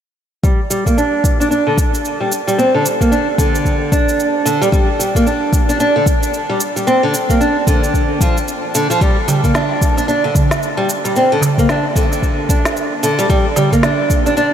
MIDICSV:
0, 0, Header, 1, 4, 480
1, 0, Start_track
1, 0, Key_signature, -2, "minor"
1, 0, Tempo, 535714
1, 394, Time_signature, 4, 2, 24, 8
1, 13023, End_track
2, 0, Start_track
2, 0, Title_t, "Nylon-string guitar"
2, 0, Program_c, 0, 24
2, 391, Note_on_c, 0, 55, 78
2, 529, Note_off_c, 0, 55, 0
2, 630, Note_on_c, 0, 55, 66
2, 761, Note_off_c, 0, 55, 0
2, 775, Note_on_c, 0, 58, 64
2, 863, Note_off_c, 0, 58, 0
2, 875, Note_on_c, 0, 62, 68
2, 1244, Note_off_c, 0, 62, 0
2, 1256, Note_on_c, 0, 62, 63
2, 1339, Note_off_c, 0, 62, 0
2, 1350, Note_on_c, 0, 62, 67
2, 1481, Note_off_c, 0, 62, 0
2, 1494, Note_on_c, 0, 50, 65
2, 1587, Note_off_c, 0, 50, 0
2, 1976, Note_on_c, 0, 55, 67
2, 2068, Note_off_c, 0, 55, 0
2, 2218, Note_on_c, 0, 55, 67
2, 2304, Note_off_c, 0, 55, 0
2, 2315, Note_on_c, 0, 60, 72
2, 2444, Note_off_c, 0, 60, 0
2, 2459, Note_on_c, 0, 50, 69
2, 2550, Note_off_c, 0, 50, 0
2, 2698, Note_on_c, 0, 58, 65
2, 2785, Note_off_c, 0, 58, 0
2, 2792, Note_on_c, 0, 62, 72
2, 2930, Note_off_c, 0, 62, 0
2, 3032, Note_on_c, 0, 50, 64
2, 3503, Note_off_c, 0, 50, 0
2, 3515, Note_on_c, 0, 62, 61
2, 3985, Note_off_c, 0, 62, 0
2, 3991, Note_on_c, 0, 50, 65
2, 4122, Note_off_c, 0, 50, 0
2, 4135, Note_on_c, 0, 55, 85
2, 4191, Note_off_c, 0, 55, 0
2, 4231, Note_on_c, 0, 55, 88
2, 4369, Note_off_c, 0, 55, 0
2, 4475, Note_on_c, 0, 55, 68
2, 4604, Note_off_c, 0, 55, 0
2, 4622, Note_on_c, 0, 58, 64
2, 4707, Note_off_c, 0, 58, 0
2, 4718, Note_on_c, 0, 62, 65
2, 5085, Note_off_c, 0, 62, 0
2, 5100, Note_on_c, 0, 62, 67
2, 5185, Note_off_c, 0, 62, 0
2, 5198, Note_on_c, 0, 62, 71
2, 5325, Note_off_c, 0, 62, 0
2, 5339, Note_on_c, 0, 50, 69
2, 5430, Note_off_c, 0, 50, 0
2, 5819, Note_on_c, 0, 55, 69
2, 5910, Note_off_c, 0, 55, 0
2, 6059, Note_on_c, 0, 55, 65
2, 6145, Note_off_c, 0, 55, 0
2, 6156, Note_on_c, 0, 60, 70
2, 6284, Note_off_c, 0, 60, 0
2, 6301, Note_on_c, 0, 50, 66
2, 6391, Note_off_c, 0, 50, 0
2, 6541, Note_on_c, 0, 58, 70
2, 6626, Note_off_c, 0, 58, 0
2, 6635, Note_on_c, 0, 62, 70
2, 6771, Note_off_c, 0, 62, 0
2, 6877, Note_on_c, 0, 50, 65
2, 7346, Note_off_c, 0, 50, 0
2, 7358, Note_on_c, 0, 53, 64
2, 7492, Note_off_c, 0, 53, 0
2, 7838, Note_on_c, 0, 50, 84
2, 7965, Note_off_c, 0, 50, 0
2, 7974, Note_on_c, 0, 53, 67
2, 8063, Note_off_c, 0, 53, 0
2, 8075, Note_on_c, 0, 55, 86
2, 8211, Note_off_c, 0, 55, 0
2, 8314, Note_on_c, 0, 55, 71
2, 8443, Note_off_c, 0, 55, 0
2, 8458, Note_on_c, 0, 58, 65
2, 8545, Note_off_c, 0, 58, 0
2, 8552, Note_on_c, 0, 62, 65
2, 8922, Note_off_c, 0, 62, 0
2, 8937, Note_on_c, 0, 62, 67
2, 9022, Note_off_c, 0, 62, 0
2, 9032, Note_on_c, 0, 62, 66
2, 9163, Note_off_c, 0, 62, 0
2, 9177, Note_on_c, 0, 50, 63
2, 9269, Note_off_c, 0, 50, 0
2, 9653, Note_on_c, 0, 55, 69
2, 9747, Note_off_c, 0, 55, 0
2, 9900, Note_on_c, 0, 55, 66
2, 9986, Note_off_c, 0, 55, 0
2, 10001, Note_on_c, 0, 60, 67
2, 10127, Note_off_c, 0, 60, 0
2, 10144, Note_on_c, 0, 50, 69
2, 10232, Note_off_c, 0, 50, 0
2, 10384, Note_on_c, 0, 58, 68
2, 10468, Note_off_c, 0, 58, 0
2, 10479, Note_on_c, 0, 62, 68
2, 10613, Note_off_c, 0, 62, 0
2, 10716, Note_on_c, 0, 50, 67
2, 11185, Note_off_c, 0, 50, 0
2, 11198, Note_on_c, 0, 62, 66
2, 11666, Note_off_c, 0, 62, 0
2, 11675, Note_on_c, 0, 50, 66
2, 11804, Note_off_c, 0, 50, 0
2, 11815, Note_on_c, 0, 55, 88
2, 11871, Note_off_c, 0, 55, 0
2, 11914, Note_on_c, 0, 55, 85
2, 12050, Note_off_c, 0, 55, 0
2, 12152, Note_on_c, 0, 55, 70
2, 12282, Note_off_c, 0, 55, 0
2, 12298, Note_on_c, 0, 58, 69
2, 12384, Note_off_c, 0, 58, 0
2, 12392, Note_on_c, 0, 62, 70
2, 12762, Note_off_c, 0, 62, 0
2, 12779, Note_on_c, 0, 62, 72
2, 12865, Note_off_c, 0, 62, 0
2, 12875, Note_on_c, 0, 62, 73
2, 13004, Note_off_c, 0, 62, 0
2, 13023, End_track
3, 0, Start_track
3, 0, Title_t, "Darbuka"
3, 8213, Note_on_c, 9, 62, 28
3, 8302, Note_off_c, 9, 62, 0
3, 8312, Note_on_c, 9, 62, 46
3, 8315, Note_on_c, 9, 64, 76
3, 8320, Note_on_c, 9, 63, 62
3, 8401, Note_off_c, 9, 62, 0
3, 8405, Note_off_c, 9, 64, 0
3, 8409, Note_off_c, 9, 63, 0
3, 8458, Note_on_c, 9, 64, 81
3, 8547, Note_off_c, 9, 64, 0
3, 8936, Note_on_c, 9, 62, 48
3, 9026, Note_off_c, 9, 62, 0
3, 9271, Note_on_c, 9, 64, 84
3, 9360, Note_off_c, 9, 64, 0
3, 9896, Note_on_c, 9, 62, 55
3, 9985, Note_off_c, 9, 62, 0
3, 10224, Note_on_c, 9, 62, 49
3, 10227, Note_on_c, 9, 64, 73
3, 10234, Note_on_c, 9, 63, 66
3, 10314, Note_off_c, 9, 62, 0
3, 10317, Note_off_c, 9, 64, 0
3, 10323, Note_off_c, 9, 63, 0
3, 10377, Note_on_c, 9, 64, 83
3, 10467, Note_off_c, 9, 64, 0
3, 10853, Note_on_c, 9, 62, 45
3, 10943, Note_off_c, 9, 62, 0
3, 12057, Note_on_c, 9, 62, 31
3, 12146, Note_off_c, 9, 62, 0
3, 12151, Note_on_c, 9, 63, 72
3, 12153, Note_on_c, 9, 64, 76
3, 12155, Note_on_c, 9, 62, 50
3, 12241, Note_off_c, 9, 63, 0
3, 12242, Note_off_c, 9, 64, 0
3, 12244, Note_off_c, 9, 62, 0
3, 12297, Note_on_c, 9, 64, 85
3, 12387, Note_off_c, 9, 64, 0
3, 12775, Note_on_c, 9, 62, 47
3, 12865, Note_off_c, 9, 62, 0
3, 13023, End_track
4, 0, Start_track
4, 0, Title_t, "Drums"
4, 390, Note_on_c, 9, 36, 100
4, 395, Note_on_c, 9, 82, 29
4, 480, Note_off_c, 9, 36, 0
4, 485, Note_off_c, 9, 82, 0
4, 633, Note_on_c, 9, 82, 65
4, 723, Note_off_c, 9, 82, 0
4, 773, Note_on_c, 9, 36, 52
4, 779, Note_on_c, 9, 82, 37
4, 863, Note_off_c, 9, 36, 0
4, 869, Note_off_c, 9, 82, 0
4, 879, Note_on_c, 9, 82, 30
4, 968, Note_off_c, 9, 82, 0
4, 1111, Note_on_c, 9, 36, 86
4, 1118, Note_on_c, 9, 82, 64
4, 1200, Note_off_c, 9, 36, 0
4, 1208, Note_off_c, 9, 82, 0
4, 1263, Note_on_c, 9, 82, 38
4, 1353, Note_off_c, 9, 82, 0
4, 1359, Note_on_c, 9, 82, 27
4, 1449, Note_off_c, 9, 82, 0
4, 1591, Note_on_c, 9, 36, 89
4, 1597, Note_on_c, 9, 82, 66
4, 1680, Note_off_c, 9, 36, 0
4, 1687, Note_off_c, 9, 82, 0
4, 1742, Note_on_c, 9, 82, 37
4, 1832, Note_off_c, 9, 82, 0
4, 1837, Note_on_c, 9, 82, 29
4, 1926, Note_off_c, 9, 82, 0
4, 2077, Note_on_c, 9, 82, 64
4, 2167, Note_off_c, 9, 82, 0
4, 2224, Note_on_c, 9, 82, 39
4, 2314, Note_off_c, 9, 82, 0
4, 2320, Note_on_c, 9, 82, 33
4, 2410, Note_off_c, 9, 82, 0
4, 2559, Note_on_c, 9, 82, 66
4, 2649, Note_off_c, 9, 82, 0
4, 2695, Note_on_c, 9, 36, 53
4, 2701, Note_on_c, 9, 82, 40
4, 2784, Note_off_c, 9, 36, 0
4, 2791, Note_off_c, 9, 82, 0
4, 2799, Note_on_c, 9, 82, 30
4, 2888, Note_off_c, 9, 82, 0
4, 3031, Note_on_c, 9, 36, 103
4, 3038, Note_on_c, 9, 82, 71
4, 3121, Note_off_c, 9, 36, 0
4, 3128, Note_off_c, 9, 82, 0
4, 3182, Note_on_c, 9, 82, 40
4, 3271, Note_off_c, 9, 82, 0
4, 3272, Note_on_c, 9, 36, 52
4, 3278, Note_on_c, 9, 82, 27
4, 3361, Note_off_c, 9, 36, 0
4, 3368, Note_off_c, 9, 82, 0
4, 3512, Note_on_c, 9, 36, 88
4, 3517, Note_on_c, 9, 82, 69
4, 3602, Note_off_c, 9, 36, 0
4, 3607, Note_off_c, 9, 82, 0
4, 3662, Note_on_c, 9, 82, 39
4, 3752, Note_off_c, 9, 82, 0
4, 3760, Note_on_c, 9, 82, 29
4, 3850, Note_off_c, 9, 82, 0
4, 3998, Note_on_c, 9, 82, 69
4, 4087, Note_off_c, 9, 82, 0
4, 4143, Note_on_c, 9, 82, 41
4, 4232, Note_off_c, 9, 82, 0
4, 4232, Note_on_c, 9, 36, 111
4, 4241, Note_on_c, 9, 82, 31
4, 4322, Note_off_c, 9, 36, 0
4, 4331, Note_off_c, 9, 82, 0
4, 4482, Note_on_c, 9, 82, 70
4, 4572, Note_off_c, 9, 82, 0
4, 4615, Note_on_c, 9, 36, 56
4, 4626, Note_on_c, 9, 82, 42
4, 4705, Note_off_c, 9, 36, 0
4, 4715, Note_off_c, 9, 82, 0
4, 4721, Note_on_c, 9, 82, 32
4, 4811, Note_off_c, 9, 82, 0
4, 4951, Note_on_c, 9, 36, 96
4, 4958, Note_on_c, 9, 82, 70
4, 5041, Note_off_c, 9, 36, 0
4, 5048, Note_off_c, 9, 82, 0
4, 5101, Note_on_c, 9, 82, 40
4, 5191, Note_off_c, 9, 82, 0
4, 5196, Note_on_c, 9, 82, 30
4, 5286, Note_off_c, 9, 82, 0
4, 5431, Note_on_c, 9, 36, 101
4, 5438, Note_on_c, 9, 82, 67
4, 5521, Note_off_c, 9, 36, 0
4, 5528, Note_off_c, 9, 82, 0
4, 5581, Note_on_c, 9, 82, 40
4, 5671, Note_off_c, 9, 82, 0
4, 5678, Note_on_c, 9, 82, 30
4, 5767, Note_off_c, 9, 82, 0
4, 5917, Note_on_c, 9, 82, 73
4, 6006, Note_off_c, 9, 82, 0
4, 6063, Note_on_c, 9, 82, 40
4, 6153, Note_off_c, 9, 82, 0
4, 6159, Note_on_c, 9, 82, 31
4, 6248, Note_off_c, 9, 82, 0
4, 6398, Note_on_c, 9, 82, 68
4, 6488, Note_off_c, 9, 82, 0
4, 6537, Note_on_c, 9, 36, 54
4, 6542, Note_on_c, 9, 82, 41
4, 6626, Note_off_c, 9, 36, 0
4, 6631, Note_off_c, 9, 82, 0
4, 6640, Note_on_c, 9, 82, 31
4, 6730, Note_off_c, 9, 82, 0
4, 6873, Note_on_c, 9, 36, 104
4, 6877, Note_on_c, 9, 82, 66
4, 6962, Note_off_c, 9, 36, 0
4, 6967, Note_off_c, 9, 82, 0
4, 7022, Note_on_c, 9, 82, 39
4, 7112, Note_off_c, 9, 82, 0
4, 7113, Note_on_c, 9, 36, 56
4, 7120, Note_on_c, 9, 82, 29
4, 7202, Note_off_c, 9, 36, 0
4, 7210, Note_off_c, 9, 82, 0
4, 7353, Note_on_c, 9, 36, 95
4, 7359, Note_on_c, 9, 82, 71
4, 7442, Note_off_c, 9, 36, 0
4, 7448, Note_off_c, 9, 82, 0
4, 7503, Note_on_c, 9, 82, 37
4, 7592, Note_off_c, 9, 82, 0
4, 7598, Note_on_c, 9, 82, 30
4, 7688, Note_off_c, 9, 82, 0
4, 7837, Note_on_c, 9, 82, 70
4, 7927, Note_off_c, 9, 82, 0
4, 7983, Note_on_c, 9, 82, 42
4, 8072, Note_off_c, 9, 82, 0
4, 8074, Note_on_c, 9, 36, 113
4, 8079, Note_on_c, 9, 82, 29
4, 8163, Note_off_c, 9, 36, 0
4, 8168, Note_off_c, 9, 82, 0
4, 8318, Note_on_c, 9, 82, 62
4, 8408, Note_off_c, 9, 82, 0
4, 8458, Note_on_c, 9, 36, 53
4, 8461, Note_on_c, 9, 82, 37
4, 8547, Note_off_c, 9, 36, 0
4, 8551, Note_off_c, 9, 82, 0
4, 8556, Note_on_c, 9, 38, 63
4, 8560, Note_on_c, 9, 82, 28
4, 8645, Note_off_c, 9, 38, 0
4, 8650, Note_off_c, 9, 82, 0
4, 8794, Note_on_c, 9, 36, 96
4, 8799, Note_on_c, 9, 82, 69
4, 8883, Note_off_c, 9, 36, 0
4, 8889, Note_off_c, 9, 82, 0
4, 8943, Note_on_c, 9, 82, 39
4, 9032, Note_off_c, 9, 82, 0
4, 9040, Note_on_c, 9, 82, 29
4, 9130, Note_off_c, 9, 82, 0
4, 9273, Note_on_c, 9, 36, 92
4, 9279, Note_on_c, 9, 82, 66
4, 9363, Note_off_c, 9, 36, 0
4, 9368, Note_off_c, 9, 82, 0
4, 9419, Note_on_c, 9, 38, 62
4, 9423, Note_on_c, 9, 82, 39
4, 9508, Note_off_c, 9, 38, 0
4, 9513, Note_off_c, 9, 82, 0
4, 9521, Note_on_c, 9, 82, 29
4, 9611, Note_off_c, 9, 82, 0
4, 9760, Note_on_c, 9, 82, 68
4, 9850, Note_off_c, 9, 82, 0
4, 9902, Note_on_c, 9, 82, 41
4, 9992, Note_off_c, 9, 82, 0
4, 9999, Note_on_c, 9, 82, 29
4, 10089, Note_off_c, 9, 82, 0
4, 10238, Note_on_c, 9, 82, 65
4, 10328, Note_off_c, 9, 82, 0
4, 10377, Note_on_c, 9, 36, 52
4, 10384, Note_on_c, 9, 82, 38
4, 10466, Note_off_c, 9, 36, 0
4, 10473, Note_off_c, 9, 82, 0
4, 10475, Note_on_c, 9, 38, 68
4, 10479, Note_on_c, 9, 82, 28
4, 10564, Note_off_c, 9, 38, 0
4, 10569, Note_off_c, 9, 82, 0
4, 10713, Note_on_c, 9, 36, 92
4, 10719, Note_on_c, 9, 82, 64
4, 10802, Note_off_c, 9, 36, 0
4, 10809, Note_off_c, 9, 82, 0
4, 10863, Note_on_c, 9, 82, 38
4, 10953, Note_off_c, 9, 82, 0
4, 10953, Note_on_c, 9, 36, 54
4, 10960, Note_on_c, 9, 82, 26
4, 11043, Note_off_c, 9, 36, 0
4, 11049, Note_off_c, 9, 82, 0
4, 11192, Note_on_c, 9, 36, 92
4, 11198, Note_on_c, 9, 82, 68
4, 11282, Note_off_c, 9, 36, 0
4, 11288, Note_off_c, 9, 82, 0
4, 11338, Note_on_c, 9, 38, 69
4, 11343, Note_on_c, 9, 82, 38
4, 11428, Note_off_c, 9, 38, 0
4, 11432, Note_off_c, 9, 82, 0
4, 11438, Note_on_c, 9, 82, 29
4, 11528, Note_off_c, 9, 82, 0
4, 11678, Note_on_c, 9, 82, 70
4, 11767, Note_off_c, 9, 82, 0
4, 11820, Note_on_c, 9, 82, 40
4, 11910, Note_off_c, 9, 82, 0
4, 11913, Note_on_c, 9, 36, 103
4, 11916, Note_on_c, 9, 82, 30
4, 12002, Note_off_c, 9, 36, 0
4, 12006, Note_off_c, 9, 82, 0
4, 12155, Note_on_c, 9, 82, 64
4, 12245, Note_off_c, 9, 82, 0
4, 12296, Note_on_c, 9, 36, 52
4, 12302, Note_on_c, 9, 82, 41
4, 12385, Note_off_c, 9, 36, 0
4, 12391, Note_off_c, 9, 82, 0
4, 12393, Note_on_c, 9, 38, 75
4, 12397, Note_on_c, 9, 82, 31
4, 12482, Note_off_c, 9, 38, 0
4, 12487, Note_off_c, 9, 82, 0
4, 12633, Note_on_c, 9, 36, 88
4, 12636, Note_on_c, 9, 82, 65
4, 12722, Note_off_c, 9, 36, 0
4, 12726, Note_off_c, 9, 82, 0
4, 12780, Note_on_c, 9, 82, 38
4, 12870, Note_off_c, 9, 82, 0
4, 12877, Note_on_c, 9, 82, 27
4, 12966, Note_off_c, 9, 82, 0
4, 13023, End_track
0, 0, End_of_file